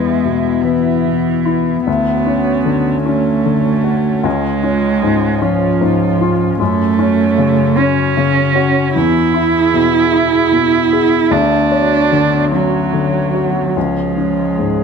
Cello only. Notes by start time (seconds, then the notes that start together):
Already playing: G#3
0.64 E3
1.86 B3
3.05 A3
4.25 G#3
5.42 F3
6.59 A3
7.77 C#4
8.94 E4
11.32 D4
12.53 F#3
13.76 F3